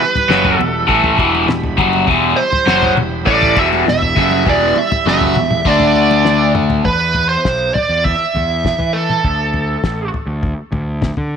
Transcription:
0.00 5.62 E3 medium
0.00 5.62 G3 medium
0.00 5.62 G4 medium
0.00 0.55 B4 medium
0.00 5.61 B5 medium
0.15 floor tom medium
0.15 high conga medium
0.28 0.57 F#1 medium
0.28 0.58 F#2 medium
0.28 0.58 C#3 loud
0.28 0.58 F#3 loud
0.28 snare medium
0.45 floor tom medium
0.55 0.87 E1 medium
0.55 0.83 E2 medium
0.55 0.83 B2 medium
0.55 1.15 A4 medium
0.61 low conga medium
0.87 1.17 A1 medium
0.87 1.17 A2 medium
0.87 1.17 E3 medium
0.87 1.18 A3 loud
0.87 kick medium
1.04 floor tom medium
1.17 1.46 E1 medium
1.17 1.46 E2 loud
1.17 1.46 B2 medium
1.17 1.48 E3 medium
1.17 kick loud
1.17 low conga medium
1.35 high conga medium
1.47 1.75 E1 medium
1.47 1.72 E2 medium
1.47 1.72 B2 medium
1.47 snare medium
1.47 mid tom medium
1.64 floor tom medium
1.77 2.06 F#1 medium
1.77 2.07 F#2 medium
1.77 2.07 C#3 medium
1.77 2.07 F#3 loud
1.77 kick loud
1.77 low conga medium
1.93 high conga medium
2.07 2.35 E1 medium
2.07 2.36 E2 medium
2.07 2.37 B2 loud
2.07 2.37 E3 loud
2.07 kick loud
2.07 floor tom medium
2.36 2.93 C5 loud
2.36 muted picked electric bass stroke soft
2.36 muted overdriven electric guitar stroke medium
2.52 floor tom medium
2.52 high conga medium
2.66 2.95 F#1 medium
2.66 2.95 F#2 medium
2.66 2.95 C#3 medium
2.66 2.96 F#3 loud
2.66 snare medium
2.83 floor tom medium
2.95 3.25 E1 medium
2.95 3.20 E2 medium
2.95 3.20 B2 medium
2.95 mid tom medium
2.95 low conga medium
3.25 3.55 A1 medium
3.25 3.55 A2 medium
3.25 3.55 E3 medium
3.25 3.56 A3 loud
3.25 3.58 D5 loud
3.25 kick loud
3.42 floor tom medium
3.56 3.85 E1 medium
3.56 3.84 E2 medium
3.56 3.84 B2 loud
3.56 3.86 E3 loud
3.56 3.67 E5 medium
3.56 kick loud
3.56 low conga medium
3.73 high conga medium
3.86 4.14 E1 medium
3.86 4.10 E2 medium
3.86 4.10 B2 medium
3.86 4.44 E5 medium
3.86 snare medium
3.86 mid tom medium
4.02 floor tom medium
4.15 4.44 F#1 medium
4.15 4.44 F#2 medium
4.15 4.45 C#3 medium
4.15 4.45 F#3 medium
4.15 kick loud
4.15 low conga medium
4.31 high conga medium
4.44 4.74 E1 medium
4.44 4.74 E2 medium
4.44 4.75 B2 medium
4.44 4.75 E3 medium
4.44 kick loud
4.44 floor tom medium
4.49 4.79 D5 medium
4.75 5.05 E5 medium
4.75 muted overdriven electric guitar stroke medium
4.75 muted picked electric bass stroke soft
4.75 high conga medium
4.92 floor tom medium
4.92 high conga medium
5.06 5.34 F#1 medium
5.06 5.35 F#2 medium
5.06 5.35 C#3 medium
5.06 5.35 F#3 loud
5.06 5.69 E5 loud
5.06 snare medium
5.21 floor tom medium
5.35 5.64 E1 medium
5.35 5.60 E2 medium
5.35 5.60 B2 medium
5.35 mid tom medium
5.35 low conga medium
5.51 mid tom medium
5.65 6.80 D2 medium
5.65 6.84 D3 medium
5.65 6.83 D3 medium
5.65 6.83 A3 medium
5.65 6.84 A3 medium
5.65 6.84 D4 loud
5.65 6.83 A4 medium
5.65 6.84 D5 medium
5.65 6.52 D5 medium
5.65 kick loud
5.65 high conga medium
5.80 floor tom medium
5.95 low conga medium
6.11 high conga medium
6.25 snare medium
6.55 mid tom medium
6.55 low conga medium
6.70 floor tom medium
6.70 high conga medium
6.85 7.36 E2 medium
6.85 7.28 B4 medium
6.85 kick medium
6.85 floor tom medium
7.14 floor tom medium
7.29 7.74 C5 medium
7.45 7.70 B1 medium
7.45 kick medium
7.45 snare medium
7.74 8.05 D5 medium
7.74 floor tom medium
7.74 mid tom medium
7.89 8.15 E2 medium
8.04 8.96 E5 loud
8.04 kick medium
8.04 floor tom medium
8.34 8.73 E2 medium
8.34 floor tom medium
8.65 kick medium
8.65 snare medium
8.65 mid tom medium
8.78 9.17 E3 medium
8.78 floor tom medium
8.93 10.09 A4 medium
9.10 mid tom medium
9.24 9.75 D2 medium
9.24 kick loud
9.24 floor tom medium
9.54 floor tom medium
9.83 10.09 A1 medium
9.83 kick medium
9.83 snare medium
10.14 floor tom medium
10.27 10.53 D2 medium
10.43 kick loud
10.43 floor tom medium
10.72 11.10 D2 medium
10.72 floor tom medium
11.02 kick medium
11.02 snare medium
11.02 mid tom medium
11.17 11.37 D3 medium
11.17 floor tom medium

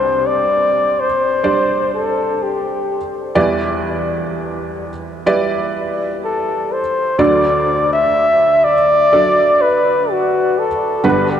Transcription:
0.00 3.32 C2 soft
0.00 3.32 C3 soft
0.00 1.06 G3 medium
0.00 1.06 D4 medium
0.00 0.28 C5 medium
0.00 1.06 C5 medium
0.00 1.06 D5 medium
0.27 1.01 D5 loud
1.00 1.94 C5 medium
1.43 2.97 G3 medium
1.43 2.98 D4 medium
1.43 2.97 C5 medium
1.43 2.98 D5 medium
1.95 2.45 A4 medium
2.43 3.13 G4 medium
3.35 7.15 E2 medium
3.35 7.15 E3 medium
3.35 4.89 G3 medium
3.35 4.89 E4 medium
3.35 4.90 B4 medium
3.35 4.89 D5 medium
5.26 6.81 G3 medium
5.26 6.81 E4 medium
5.26 6.81 B4 medium
5.26 6.81 D5 medium
6.25 6.74 A4 medium
6.72 7.21 C5 medium
7.18 11.00 D2 medium
7.18 11.00 D3 medium
7.18 8.73 F#3 medium
7.18 8.73 D4 medium
7.18 8.73 A4 medium
7.18 8.74 D5 medium
7.18 7.92 D5 loud
7.93 8.66 E5 loud
8.64 9.63 D5 loud
9.13 10.67 F#3 medium
9.13 10.67 D4 medium
9.13 10.67 A4 medium
9.13 10.67 D5 medium
9.62 10.13 B4 medium
10.11 10.61 F#4 medium
10.59 11.06 A4 medium
11.04 11.40 G1 medium
11.04 11.40 G2 medium
11.04 11.40 G3 medium
11.04 11.40 D4 medium
11.04 11.40 B4 medium
11.04 11.32 B4 medium
11.04 11.40 F#5 medium
11.31 11.40 G4 medium

